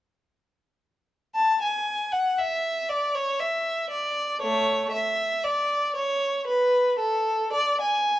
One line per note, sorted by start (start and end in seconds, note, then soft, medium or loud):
1.35 1.59 A5 medium
1.62 2.13 G#5 medium
2.12 2.38 F#5 medium
2.39 2.89 E5 medium
2.89 3.15 D5 medium
3.14 3.40 C#5 medium
3.40 3.90 E5 medium
3.90 4.40 D5 medium
4.41 4.89 A3 medium
4.41 4.91 C#5 medium
4.91 5.42 E5 medium
5.43 5.94 D5 medium
5.95 6.44 C#5 medium
6.47 6.97 B4 medium
6.98 7.51 A4 medium
7.53 7.79 D5 medium
7.80 8.20 G#5 medium